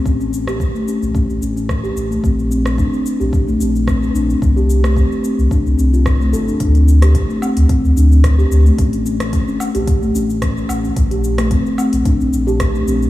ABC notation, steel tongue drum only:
X:1
M:4/4
L:1/16
Q:"Swing 16ths" 1/4=110
K:Aphr
V:1 name="Steel tongue drum"
^C C2 G z A, C2 C2 C C2 G z A, | C2 C2 D C2 G z A, C2 C2 D C | z G z A, C2 C2 D C C F z A, A D | D C2 G z A, C2 C2 D C2 G z A, |
^C2 C2 C C2 G z A, C2 C2 C C | z G z A, C2 C2 D C2 G z A, C2 |]